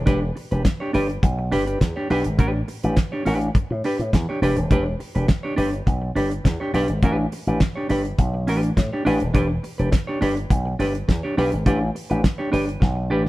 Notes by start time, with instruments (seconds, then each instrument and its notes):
0.06 slap bass E1, clean electric guitar D4 G4 B4, kick, closed hi-hat
0.22 muted clean electric guitar stroke
0.36 muted clean electric guitar stroke, open hi-hat
0.51 slap bass E1, clean electric guitar D4 G4 B4, closed hi-hat
0.65 muted clean electric guitar stroke, kick, snare, closed hi-hat
0.80 clean electric guitar D4 G4 C#5
0.93 slap bass G1, clean electric guitar D4 G4 B4, open hi-hat
1.10 muted clean electric guitar stroke, closed hi-hat
1.23 slap bass B1, muted clean electric guitar stroke, kick, closed hi-hat
1.39 muted clean electric guitar stroke
1.52 slap bass G1, clean electric guitar D4 G4 B4, open hi-hat
1.66 clean electric guitar D4 G4 B4, closed hi-hat
1.81 slap bass E2, muted clean electric guitar stroke, kick, snare, closed hi-hat
1.96 clean electric guitar D4 G4 C#5
2.10 slap bass B1, clean electric guitar D4 G4 B4, open hi-hat
2.24 slap bass G#1, muted clean electric guitar stroke, closed hi-hat
2.39 slap bass A1, clean electric guitar D4 G4 B4, kick, closed hi-hat
2.54 muted clean electric guitar stroke
2.68 muted clean electric guitar stroke, open hi-hat
2.83 slap bass A1, clean electric guitar D4 G4 B4, closed hi-hat
2.96 muted clean electric guitar stroke, kick, snare, closed hi-hat
3.12 clean electric guitar D4 G4 C#5
3.25 slap bass A1, clean electric guitar D4 G4 B4, open hi-hat
3.41 muted clean electric guitar stroke, closed hi-hat
3.55 muted clean electric guitar stroke, kick, closed hi-hat
3.71 slap bass A2, muted clean electric guitar stroke
3.84 clean electric guitar D4 G4 B4, open hi-hat
3.99 slap bass A2, muted clean electric guitar stroke, closed hi-hat
4.13 slap bass E2, muted clean electric guitar stroke, kick, snare, closed hi-hat
4.29 clean electric guitar D4 G4 C#5
4.42 slap bass E1, clean electric guitar D4 G4 B4, open hi-hat
4.57 slap bass D#1, muted clean electric guitar stroke, closed hi-hat
4.71 slap bass E1, clean electric guitar D4 G4 B4, kick, closed hi-hat
4.86 muted clean electric guitar stroke
5.00 muted clean electric guitar stroke, open hi-hat
5.15 slap bass E1, clean electric guitar D4 G4 B4, closed hi-hat
5.28 muted clean electric guitar stroke, kick, snare, closed hi-hat
5.43 clean electric guitar D4 G4 C#5
5.56 slap bass G1, clean electric guitar D4 G4 B4, open hi-hat
5.72 muted clean electric guitar stroke, closed hi-hat
5.87 slap bass B1, muted clean electric guitar stroke, kick, closed hi-hat
6.02 muted clean electric guitar stroke
6.15 slap bass G1, clean electric guitar D4 G4 B4, open hi-hat
6.31 muted clean electric guitar stroke, closed hi-hat
6.44 slap bass E2, muted clean electric guitar stroke, kick, snare, closed hi-hat
6.60 clean electric guitar D4 G4 C#5
6.74 slap bass B1, clean electric guitar D4 G4 B4, open hi-hat
6.88 slap bass G#1, muted clean electric guitar stroke, closed hi-hat
7.02 slap bass A1, clean electric guitar D4 G4 B4, kick, closed hi-hat
7.19 muted clean electric guitar stroke
7.32 muted clean electric guitar stroke, open hi-hat
7.47 slap bass A1, clean electric guitar D4 G4 B4, closed hi-hat
7.60 kick, snare, closed hi-hat
7.76 clean electric guitar D4 G4 C#5
7.89 slap bass G1, clean electric guitar D4 G4 B4, open hi-hat
8.04 muted clean electric guitar stroke, closed hi-hat
8.18 slap bass B1, muted clean electric guitar stroke, kick, closed hi-hat
8.34 muted clean electric guitar stroke
8.47 slap bass A1, clean electric guitar D4 G4 B4, open hi-hat
8.63 muted clean electric guitar stroke, closed hi-hat
8.77 slap bass A2, muted clean electric guitar stroke, kick, snare, closed hi-hat
8.93 clean electric guitar D4 G4 C#5
9.05 slap bass A1, clean electric guitar D4 G4 B4, open hi-hat
9.20 slap bass D#1, muted clean electric guitar stroke, closed hi-hat
9.34 slap bass E1, clean electric guitar D4 G4 B4, kick, closed hi-hat
9.50 muted clean electric guitar stroke
9.63 muted clean electric guitar stroke, open hi-hat
9.78 slap bass E1, clean electric guitar D4 G4 B4, closed hi-hat
9.92 muted clean electric guitar stroke, kick, snare, closed hi-hat
10.07 clean electric guitar D4 G4 C#5
10.21 slap bass G1, clean electric guitar D4 G4 B4, open hi-hat
10.37 muted clean electric guitar stroke, closed hi-hat
10.50 slap bass B1, muted clean electric guitar stroke, kick, closed hi-hat
10.65 muted clean electric guitar stroke
10.79 slap bass G1, clean electric guitar D4 G4 B4, open hi-hat
10.95 muted clean electric guitar stroke, closed hi-hat
11.08 slap bass E2, muted clean electric guitar stroke, kick, snare, closed hi-hat
11.23 clean electric guitar D4 G4 C#5
11.37 slap bass B1, clean electric guitar D4 G4 B4, open hi-hat
11.52 slap bass G#1, muted clean electric guitar stroke, closed hi-hat
11.66 slap bass A1, clean electric guitar D4 G4 B4, kick, closed hi-hat
11.81 muted clean electric guitar stroke
11.95 muted clean electric guitar stroke, open hi-hat
12.10 slap bass A1, clean electric guitar D4 G4 B4, closed hi-hat
12.24 muted clean electric guitar stroke, kick, snare, closed hi-hat
12.38 clean electric guitar D4 G4 C#5
12.52 slap bass G1, clean electric guitar D4 G4 B4, open hi-hat
12.67 muted clean electric guitar stroke, closed hi-hat
12.80 slap bass B1, muted clean electric guitar stroke, kick, snare
12.95 muted clean electric guitar stroke
13.10 slap bass A1, clean electric guitar D4 G4 B4
13.25 muted clean electric guitar stroke